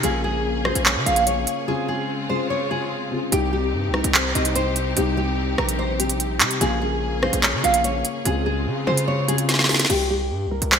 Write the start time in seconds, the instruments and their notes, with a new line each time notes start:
0.03 808-style bass A#1, grand piano C#3 A#3 F4 G#4, string section A#3 C#4 G#4, nylon-string guitar G#4, closed hi-hat
0.24 nylon-string guitar G#4
0.65 grand piano C#3 A#3 F4 G#4, nylon-string guitar C5, cross-stick
0.75 808-style bass A#1, closed hi-hat
0.86 nylon-string guitar C#5, clap
0.96 808-style bass C#3
1.06 808-style bass A#1, grand piano C#3 A#3 F4 G#4, nylon-string guitar F5, closed hi-hat
1.16 closed hi-hat
1.27 nylon-string guitar C#5, closed hi-hat
1.47 closed hi-hat
1.67 grand piano C#3 C4 F4 G#4, string section C#3 G#3 C4 F4, nylon-string guitar G#4
1.88 nylon-string guitar G#4
2.29 grand piano C#3 C4 F4 G#4, nylon-string guitar C5
2.50 nylon-string guitar C#5
2.70 grand piano C#3 C4 F4 G#4, nylon-string guitar G#4
3.11 grand piano C#3 C4 F4 G#4
3.32 808-style bass C2, grand piano C3 G3 D#4 G4, string section C3 C4 D#4 G4, nylon-string guitar G4, closed hi-hat
3.53 nylon-string guitar G4
3.73 808-style bass G2
3.89 808-style bass C2
3.93 grand piano C3 G3 D#4 G4, nylon-string guitar A#4, cross-stick
4.04 808-style bass C2, closed hi-hat
4.14 nylon-string guitar C5, clap
4.35 808-style bass C2, grand piano C3 G3 D#4 G4, nylon-string guitar D#5, closed hi-hat
4.45 closed hi-hat
4.55 nylon-string guitar C5, closed hi-hat
4.76 closed hi-hat
4.96 808-style bass C2, grand piano C3 G3 D#4 G4, nylon-string guitar G4, closed hi-hat
5.17 nylon-string guitar G4
5.58 808-style bass A#1, grand piano C3 G3 G4, nylon-string guitar A#4, cross-stick
5.69 closed hi-hat
5.79 nylon-string guitar C5
5.99 grand piano C3 G3 D#4 G4, nylon-string guitar G4, closed hi-hat
6.09 closed hi-hat
6.20 closed hi-hat
6.40 grand piano C3 G3 D#4 G4, 808-style bass C3, clap, closed hi-hat
6.51 closed hi-hat
6.61 808-style bass A#1, grand piano C#3 A#3 F4 G#4, string section A#3 C#4 G#4, nylon-string guitar G#4, closed hi-hat
6.82 nylon-string guitar G#4
7.22 grand piano C#3 A#3 F4 G#4, nylon-string guitar C5, cross-stick
7.33 808-style bass A#1, closed hi-hat
7.43 nylon-string guitar C#5, clap
7.53 808-style bass C#3
7.63 808-style bass A#1, grand piano C#3 A#3 F4 G#4, nylon-string guitar F5, closed hi-hat
7.74 closed hi-hat
7.84 nylon-string guitar C#5, closed hi-hat
8.05 closed hi-hat
8.25 808-style bass C#2, grand piano C#3 C4 F4 G#4, string section C#3 G#3 C4 F4, nylon-string guitar G#4, closed hi-hat
8.46 nylon-string guitar G#4
8.67 808-style bass C#3
8.87 grand piano C#3 C4 F4 G#4, 808-style bass C#3, nylon-string guitar C5
8.97 closed hi-hat
9.08 nylon-string guitar C#5
9.28 grand piano C#3 C4 F4 G#4, nylon-string guitar G#4, closed hi-hat
9.38 closed hi-hat
9.49 snare, closed hi-hat
9.54 snare
9.59 snare
9.64 snare
9.69 grand piano C#3 C4 F4 G#4, snare, open hi-hat
9.74 snare
9.79 snare, closed hi-hat
9.85 snare
9.90 808-style bass C2, nylon-string guitar G4, closed hi-hat, crash
10.10 nylon-string guitar G4
10.31 808-style bass G2
10.46 808-style bass C2
10.51 nylon-string guitar A#4
10.62 808-style bass C2, closed hi-hat
10.72 nylon-string guitar C5, clap